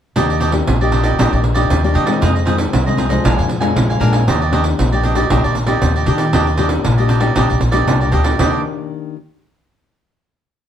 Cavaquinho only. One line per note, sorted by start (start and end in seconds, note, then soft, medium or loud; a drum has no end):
0.16 0.28 D4 medium
0.16 0.28 G4 medium
0.16 0.28 D5 medium
0.16 0.28 D#5 medium
0.29 0.39 G4 soft
0.29 0.40 D5 soft
0.29 0.40 D#5 soft
0.40 0.51 D4 medium
0.40 0.51 G4 medium
0.40 0.52 D5 medium
0.40 0.52 D#5 medium
0.52 muted cavaquinho stroke soft
0.81 0.91 G4 soft
0.81 0.93 D5 soft
0.81 0.92 D#5 soft
0.92 1.05 D4 soft
0.92 1.04 G4 soft
0.92 1.02 D5 medium
0.92 1.03 D#5 medium
1.03 1.17 G4 medium
1.03 1.16 D5 medium
1.03 1.17 D#5 medium
1.19 1.31 D4 medium
1.19 1.31 G4 medium
1.19 1.31 D5 medium
1.19 1.31 D#5 medium
1.32 1.42 G4 soft
1.32 1.43 D5 soft
1.32 1.42 D#5 soft
1.43 muted cavaquinho stroke soft
1.54 1.82 G4 medium
1.54 1.81 D5 medium
1.54 1.81 D#5 medium
1.84 1.93 G4 soft
1.84 1.94 D5 medium
1.84 1.94 D#5 soft
1.94 2.07 D4 medium
1.94 2.06 G4 medium
1.94 2.04 D5 medium
1.94 2.06 D#5 medium
2.06 2.20 G4 soft
2.06 2.19 D5 soft
2.06 2.20 D#5 soft
2.21 2.34 F4 medium
2.21 2.34 G#4 medium
2.21 2.34 C5 medium
2.21 2.33 D#5 medium
2.35 2.45 G#4 soft
2.35 2.45 C5 soft
2.35 2.46 D#5 soft
2.45 2.56 F4 medium
2.45 2.56 G#4 medium
2.45 2.56 C5 medium
2.45 2.57 D#5 medium
2.57 muted cavaquinho stroke soft
2.86 2.97 G#4 soft
2.86 2.97 C5 soft
2.86 2.98 D#5 soft
2.97 3.10 F4 medium
2.97 3.09 G#4 medium
2.97 3.09 C5 medium
2.97 3.08 D#5 medium
3.09 3.23 G#4 medium
3.09 3.23 C5 medium
3.09 3.22 D#5 medium
3.24 3.36 D4 medium
3.24 3.37 A#4 medium
3.24 3.37 F5 medium
3.24 3.36 G#5 medium
3.38 3.48 A#4 soft
3.38 3.48 F5 soft
3.38 3.48 G#5 soft
3.49 muted cavaquinho stroke soft
3.61 3.87 A#4 medium
3.61 3.87 F5 medium
3.61 3.87 G#5 medium
3.90 3.99 A#4 soft
3.90 4.00 F5 soft
3.90 4.00 G#5 soft
4.00 4.13 D4 medium
4.00 4.13 A#4 medium
4.00 4.12 F5 medium
4.00 4.11 G#5 medium
4.12 4.26 A#4 soft
4.12 4.26 F5 soft
4.12 4.25 G#5 soft
4.27 4.39 D4 medium
4.27 4.40 G4 medium
4.27 4.40 D5 medium
4.27 4.40 D#5 medium
4.42 4.51 G4 soft
4.42 4.53 D5 soft
4.42 4.52 D#5 soft
4.52 4.63 D4 medium
4.52 4.63 G4 medium
4.52 4.64 D5 medium
4.52 4.64 D#5 medium
4.64 muted cavaquinho stroke soft
4.92 5.03 G4 soft
4.92 5.04 D5 medium
4.92 5.03 D#5 soft
5.03 5.16 D4 medium
5.03 5.16 G4 medium
5.03 5.15 D5 medium
5.03 5.15 D#5 medium
5.16 5.29 G4 soft
5.16 5.29 D5 medium
5.16 5.29 D#5 medium
5.30 5.42 D4 medium
5.30 5.43 G4 medium
5.30 5.43 D5 medium
5.30 5.43 D#5 medium
5.44 5.55 G4 soft
5.44 5.55 D5 medium
5.44 5.55 D#5 soft
5.55 muted cavaquinho stroke soft
5.67 5.93 G4 medium
5.67 5.93 D5 medium
5.67 5.93 D#5 medium
5.96 6.05 G4 soft
5.96 6.06 D5 soft
5.96 6.06 D#5 soft
6.06 6.19 D4 medium
6.06 6.18 G4 medium
6.06 6.17 D5 medium
6.06 6.17 D#5 medium
6.18 6.32 G4 soft
6.18 6.31 D5 soft
6.18 6.31 D#5 soft
6.33 6.45 D4 medium
6.33 6.45 G4 medium
6.33 6.45 D5 medium
6.33 6.45 D#5 medium
6.46 6.57 G4 soft
6.46 6.57 D5 soft
6.46 6.57 D#5 soft
6.57 6.68 D4 medium
6.57 6.68 G4 medium
6.57 6.69 D5 medium
6.57 6.68 D#5 medium
6.69 muted cavaquinho stroke soft
6.98 7.07 G4 soft
6.98 7.08 D5 soft
6.98 7.08 D#5 soft
7.08 7.21 D4 medium
7.08 7.20 G4 medium
7.08 7.19 D5 medium
7.08 7.20 D#5 medium
7.20 7.34 G4 medium
7.20 7.34 D5 medium
7.20 7.34 D#5 medium
7.35 7.48 D4 medium
7.35 7.48 G4 medium
7.35 7.48 D5 medium
7.35 7.48 D#5 medium
7.49 7.60 G4 soft
7.49 7.60 D5 soft
7.49 7.60 D#5 soft
7.60 muted cavaquinho stroke soft
7.71 7.99 G4 soft
7.71 7.98 D5 medium
7.71 7.98 D#5 medium
8.01 8.11 G4 soft
8.01 8.12 D5 soft
8.01 8.12 D#5 soft
8.12 8.24 D4 medium
8.12 8.24 G4 medium
8.12 8.23 D5 medium
8.12 8.24 D#5 medium
8.24 8.38 G4 soft
8.24 8.37 D5 soft
8.24 8.37 D#5 soft
8.39 8.60 D4 medium
8.39 8.60 G4 medium
8.39 8.60 D5 medium
8.39 8.60 D#5 medium